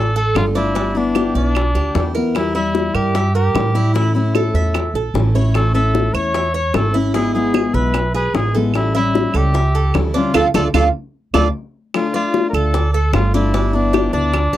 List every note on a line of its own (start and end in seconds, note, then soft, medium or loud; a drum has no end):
0.00 0.32 A1 medium
0.00 0.13 A4 loud
0.00 0.15 D5 medium
0.16 0.55 A4 medium
0.16 0.35 A4 loud
0.35 1.29 G1 medium
0.35 0.54 D3 soft
0.35 0.55 A3 soft
0.35 0.55 D4 soft
0.35 0.54 F4 medium
0.35 0.46 F4 medium
0.35 high bongo medium
0.35 low bongo medium
0.35 claves medium
0.55 0.75 A3 medium
0.55 0.74 D4 medium
0.55 0.75 D4 medium
0.55 0.99 E4 medium
0.55 0.75 F4 medium
0.75 0.94 G3 medium
0.75 0.95 B3 medium
0.75 1.14 D4 medium
0.75 0.94 E4 medium
0.75 high bongo medium
0.95 1.55 B3 medium
0.95 1.36 D4 medium
0.95 1.56 E4 medium
1.15 1.35 G4 medium
1.15 high bongo medium
1.15 claves medium
1.35 1.72 B1 medium
1.35 2.12 D4 medium
1.35 1.74 D5 medium
1.35 high bongo soft
1.55 muted steel-string acoustic guitar stroke medium
1.55 high bongo medium
1.55 claves medium
1.75 1.94 D2 medium
1.75 2.14 G4 medium
1.75 high bongo soft
1.95 2.89 E2 medium
1.95 2.14 G3 soft
1.95 2.14 B3 soft
1.95 2.14 E4 medium
1.95 high bongo medium
1.95 low bongo medium
2.15 2.35 B3 medium
2.15 2.34 E4 medium
2.15 2.54 A#4 medium
2.15 high bongo soft
2.35 2.54 E3 medium
2.35 2.54 G3 medium
2.35 2.54 E4 medium
2.35 high bongo medium
2.35 claves medium
2.55 3.14 G3 medium
2.55 3.15 E4 medium
2.55 2.96 E4 medium
2.55 2.94 E5 medium
2.75 high bongo medium
2.94 3.50 G2 medium
2.94 3.34 G4 loud
2.94 3.14 A#4 medium
2.94 claves medium
3.15 3.34 E5 medium
3.15 muted steel-string acoustic guitar stroke medium
3.15 high bongo medium
3.35 3.91 G4 medium
3.35 3.74 A#4 medium
3.54 4.48 A2 medium
3.54 3.74 E3 soft
3.54 3.74 G3 soft
3.54 3.74 E4 soft
3.54 high bongo medium
3.54 low bongo medium
3.54 claves medium
3.75 3.94 G3 medium
3.75 3.94 E4 medium
3.94 4.14 E3 medium
3.94 4.14 A3 medium
3.94 4.14 C#4 medium
3.94 4.13 E4 medium
3.94 4.34 E4 medium
3.94 4.13 E4 medium
3.94 high bongo medium
4.15 4.75 A3 medium
4.15 4.76 C#4 medium
4.15 4.76 E4 medium
4.15 4.36 E4 medium
4.35 4.95 A4 medium
4.35 4.54 A4 medium
4.35 high bongo medium
4.35 claves medium
4.54 4.91 E2 medium
4.54 4.94 E5 medium
4.54 high bongo soft
4.74 muted steel-string acoustic guitar stroke medium
4.74 high bongo medium
4.74 claves medium
4.94 5.13 A#1 medium
4.94 5.34 A4 medium
4.94 high bongo soft
5.14 6.08 A1 medium
5.14 5.34 E3 soft
5.14 5.34 A3 soft
5.14 5.34 C#4 soft
5.14 5.34 E4 soft
5.14 high bongo medium
5.14 low bongo medium
5.35 5.54 A3 medium
5.35 5.54 C#4 medium
5.35 5.54 E4 medium
5.35 5.74 C#5 medium
5.35 high bongo soft
5.54 5.74 E3 medium
5.54 5.74 A3 medium
5.54 5.74 C#4 medium
5.54 5.73 E4 medium
5.54 5.74 A4 medium
5.54 high bongo medium
5.54 claves medium
5.74 6.34 A3 soft
5.74 6.34 C#4 medium
5.74 6.35 E4 medium
5.74 6.16 A4 medium
5.74 6.13 E5 medium
5.95 high bongo medium
6.14 6.70 E2 medium
6.14 6.54 C#5 loud
6.14 6.34 C#5 medium
6.14 claves medium
6.34 6.54 E5 medium
6.34 muted steel-string acoustic guitar stroke medium
6.34 high bongo medium
6.54 6.93 C#5 medium
6.54 6.76 C#5 loud
6.74 7.68 G#1 medium
6.74 6.93 E3 soft
6.74 6.94 A3 soft
6.74 6.94 C#4 soft
6.74 6.93 E4 soft
6.74 6.95 A4 medium
6.74 high bongo medium
6.74 low bongo medium
6.74 claves medium
6.94 7.14 A3 medium
6.94 7.14 C#4 medium
6.94 7.13 E4 medium
6.94 7.14 E4 medium
7.14 7.34 D3 medium
7.14 7.34 G#3 medium
7.14 7.34 B3 medium
7.14 7.53 E4 medium
7.14 7.34 E4 medium
7.14 7.34 G#4 medium
7.14 7.33 G#4 medium
7.14 high bongo medium
7.34 7.93 G#3 medium
7.34 7.94 B3 medium
7.34 7.95 E4 medium
7.34 7.76 G#4 medium
7.34 7.94 G#4 medium
7.54 7.74 G#4 medium
7.54 high bongo medium
7.54 claves medium
7.74 8.30 B1 medium
7.74 8.14 B4 loud
7.74 8.13 E5 medium
7.74 high bongo soft
7.94 muted steel-string acoustic guitar stroke medium
7.94 high bongo medium
7.94 claves medium
8.14 8.53 G#4 medium
8.14 8.36 B4 medium
8.14 high bongo soft
8.34 9.28 A1 medium
8.34 8.54 G#3 soft
8.34 8.54 B3 soft
8.34 8.54 E4 soft
8.34 8.55 G#4 medium
8.34 8.53 G#4 medium
8.34 high bongo medium
8.34 low bongo medium
8.55 8.74 G#3 medium
8.55 8.74 B3 medium
8.55 8.74 E4 medium
8.55 8.74 G#4 medium
8.55 8.93 A4 medium
8.55 high bongo soft
8.74 8.94 E3 medium
8.74 8.94 G3 medium
8.74 8.94 C#4 medium
8.74 8.94 E4 medium
8.74 8.93 E4 medium
8.74 high bongo medium
8.74 claves medium
8.95 9.53 G3 medium
8.95 9.53 C#4 medium
8.95 9.54 E4 medium
8.95 9.38 E4 medium
8.95 9.33 E5 medium
9.15 high bongo medium
9.34 9.90 C#2 medium
9.34 9.96 G4 loud
9.34 9.54 A4 medium
9.34 claves medium
9.54 9.74 E5 medium
9.54 muted steel-string acoustic guitar stroke medium
9.54 high bongo medium
9.75 10.13 A4 medium
9.94 10.31 D2 medium
9.94 10.14 E3 soft
9.94 10.14 G3 soft
9.94 10.14 C#4 soft
9.94 10.14 E4 medium
9.94 high bongo medium
9.94 low bongo medium
9.94 claves medium
10.14 10.34 G3 medium
10.14 10.34 C#4 medium
10.14 10.34 D4 medium
10.14 10.34 E4 medium
10.14 10.34 F4 medium
10.34 10.49 D2 medium
10.34 10.47 A3 medium
10.34 10.47 D4 medium
10.34 10.47 F4 medium
10.34 10.47 A4 medium
10.34 10.45 A4 medium
10.34 10.47 D5 medium
10.34 low bongo medium
10.34 claves medium
10.54 10.69 D2 loud
10.54 10.67 A3 medium
10.54 10.67 D4 medium
10.54 10.67 F4 medium
10.54 10.67 A4 medium
10.54 10.64 A4 medium
10.54 10.67 D5 loud
10.54 low bongo medium
10.54 claves medium
10.73 10.89 D2 medium
10.73 10.87 A3 loud
10.73 10.87 D4 medium
10.73 10.87 F4 medium
10.73 10.87 A4 medium
10.73 10.84 A4 medium
10.73 10.87 D5 medium
10.73 low bongo loud
10.73 claves medium
11.33 11.49 D2 medium
11.33 11.47 A3 medium
11.33 11.47 D4 medium
11.33 11.47 F4 loud
11.33 11.47 F4 medium
11.33 11.47 A4 medium
11.33 11.44 A4 medium
11.33 11.47 D5 medium
11.33 low bongo loud
11.33 claves medium
11.94 12.13 D3 medium
11.94 12.14 A3 medium
11.94 12.14 D4 medium
11.94 12.13 F4 medium
11.94 high bongo medium
11.94 claves medium
12.14 12.74 A3 medium
12.14 12.74 D4 medium
12.14 12.73 F4 medium
12.14 12.45 F4 medium
12.14 12.53 D5 medium
12.34 high bongo medium
12.49 12.56 A#4 medium
12.53 13.10 D2 medium
12.53 12.74 A4 medium
12.53 12.92 A4 medium
12.53 claves medium
12.74 12.93 D5 medium
12.74 muted steel-string acoustic guitar stroke medium
12.74 high bongo medium
12.93 13.12 A4 medium
12.93 13.33 A4 medium
13.13 14.07 G1 medium
13.13 13.33 D3 soft
13.13 13.33 A3 soft
13.13 13.34 D4 soft
13.13 13.33 F4 medium
13.13 high bongo medium
13.13 low bongo medium
13.13 claves medium
13.34 13.53 A3 medium
13.34 13.53 D4 medium
13.34 13.54 D4 medium
13.34 13.76 E4 medium
13.34 13.53 F4 medium
13.54 13.73 G3 medium
13.54 13.73 B3 medium
13.54 13.93 D4 medium
13.54 13.72 E4 medium
13.54 high bongo medium
13.73 14.33 B3 medium
13.73 14.12 D4 medium
13.73 14.34 E4 medium
13.93 14.13 G4 medium
13.93 high bongo medium
13.93 claves medium
14.13 14.50 D2 medium
14.13 14.57 D4 loud
14.13 14.52 D5 medium
14.13 high bongo soft
14.34 muted steel-string acoustic guitar stroke medium
14.34 high bongo medium
14.34 claves medium
14.53 14.57 D2 medium
14.53 14.57 G4 medium
14.53 high bongo soft